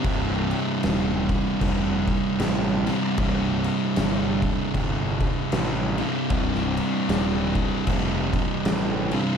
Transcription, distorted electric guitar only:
X:1
M:4/4
L:1/8
Q:"Swing" 1/4=77
K:Cdor
V:1 name="Distorted electric guitar" clef=bass
[C,,G,,C,]6- [C,,G,,C,] [C,,G,,C,] | [C,,G,,C,]6- [C,,G,,C,] [C,,G,,C,] | [C,,G,,C,]6- [C,,G,,C,] [C,,G,,C,] |]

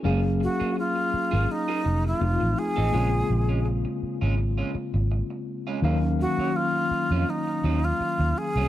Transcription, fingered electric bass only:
X:1
M:4/4
L:1/16
Q:"Swing 16ths" 1/4=83
K:Gblyd
V:1 name="Fingered electric bass" clef=bass
G,,,3 z4 A,,, z2 F,,,2 F,,, =A,,, z A,,, | B,,,2 B,,,4 z A,,,3 z A,,,2 z3 | E,,3 z4 F,, z2 E,,2 z E,, z C,, |]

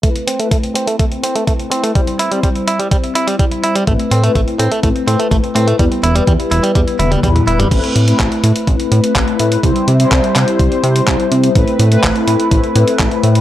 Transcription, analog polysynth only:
X:1
M:4/4
L:1/16
Q:1/4=125
K:Am
V:1 name="Analog polysynth"
[A,CEB]3 [A,CEB]12- [A,CEB] | [G,CEc]3 [G,CEc]12- [G,CEc] | [A,CEB]3 [A,CEB]12- [A,CEB] | [G,B,EB]3 [G,B,EB]6- [G,B,EB] [G,B,EB]2 [G,B,EB]4 |
[A,CEB]3 [A,CEB]12- [A,CEB] | [G,CEc]3 [G,CEc]12- [G,CEc] | [A,CEB]3 [A,CEB]12- [A,CEB] |]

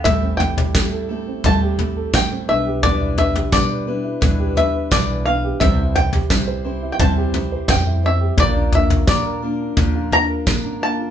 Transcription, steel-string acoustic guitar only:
X:1
M:4/4
L:1/8
Q:1/4=86
K:Am
V:1 name="Steel-string acoustic guitar"
[A,,E,G,CEA] [G,CEA] [G,CEA] [G,CEA] [A,,E,G,CEA] [G,CEA] [G,CEA] [G,DEB] | [B,,E,G,DEB] [G,DEB] [G,DEB] [G,DEB] [B,,E,G,DEB] [G,DEB] [G,DEB] [G,DB] | [C,E,G,CEc] [G,CEc] [G,CEc] [G,CEc] [C,E,G,CEc] [G,CEc] [G,CEc] [G,CEc] | [_B,,F,_B,DF_B] [B,DFB] [B,DFB] [B,DFB] [B,,F,B,DFB] [B,DFB] [B,DFB] [B,DFB] |]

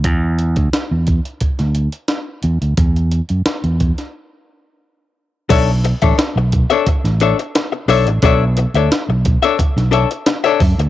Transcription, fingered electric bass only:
X:1
M:4/4
L:1/16
Q:1/4=88
K:Bm
V:1 name="Fingered electric bass" clef=bass
E,,3 D,, z E,,2 z2 D,,2 z3 E,, D,, | E,,3 F,, z E,,2 z8 z | B,,,3 A,,, z B,,,2 z2 A,,,2 z3 B,,, A,,, | B,,,3 D,, z B,,,2 z2 B,,,2 z3 F,, D,, |]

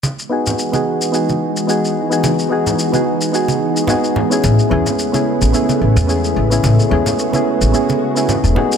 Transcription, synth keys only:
X:1
M:4/4
L:1/16
Q:"Swing 16ths" 1/4=109
K:E
V:1 name="Synth keys"
z2 [B,DFG]3 [B,DFG]3 [B,DFG]4 [B,DFG]3 [B,DFG]- | [B,DFG]2 [B,DFG]3 [B,DFG]3 [B,DFG]4 [B,DFG]3 [B,CEG]- | [B,CEG]2 [B,CEG]3 [B,CEG]3 [B,CEG]4 [B,CEG]3 [B,CEG]- | [B,CEG]2 [B,CEG]3 [B,CEG]3 [B,CEG]3 [B,CEG]3 [B,DFG]2 |]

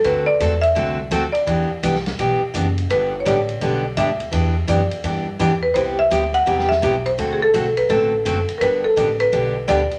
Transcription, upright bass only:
X:1
M:4/4
L:1/8
Q:"Swing" 1/4=168
K:G
V:1 name="Upright bass" clef=bass
D,,2 E,,2 C,,2 D,, z | E,, z C,,2 B,,, z F,,,2 | G,,,2 A,,,2 B,,,2 D,,2 | E,,2 F,, z G,,2 E,,2 |
C,,2 D,,2 E,,2 B,,,2 | D,,2 B,,,2 A,,,2 F,,, z | G,,,2 A,,,2 B,,,2 D,, z |]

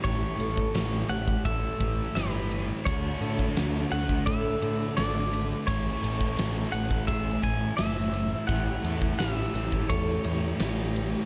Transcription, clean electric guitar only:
X:1
M:4/4
L:1/16
Q:1/4=85
K:A
V:1 name="Clean electric guitar"
c6 f2 e4 B3 z | c6 f2 e4 d3 z | c6 f2 e2 g2 e4 | f4 e4 c4 z4 |]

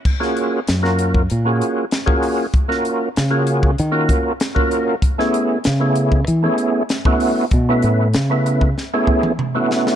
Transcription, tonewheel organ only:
X:1
M:4/4
L:1/16
Q:1/4=96
K:Gblyd
V:1 name="Tonewheel organ"
z [B,DFGA]3 z [B,DFGB]3 z [B,DFGA]3 z [B,DFGA]3 | z [B,DFGB]3 z [B,DFGA]3 z [B,DFGB]3 z [B,DFGB]3 | z [=A,_CD_F_A]3 z [=A,CDF_A]3 z [=A,CDF_A]3 z [=A,CDFG]3 | z [=A,_CD_F_c]3 z [A,CDFc]3 z [A,CDF_A]3 z [=A,CDFG]3 |]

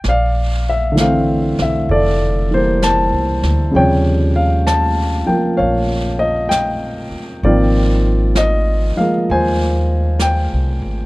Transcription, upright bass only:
X:1
M:4/4
L:1/8
Q:"Swing" 1/4=65
K:Bblyd
V:1 name="Upright bass" clef=bass
B,,,3 =B,,, F,,,2- (3F,,, C,, D,, | _E,,3 z B,,,3 z | _A,,,3 z _E,,2- (3E,, C,, A,,, |]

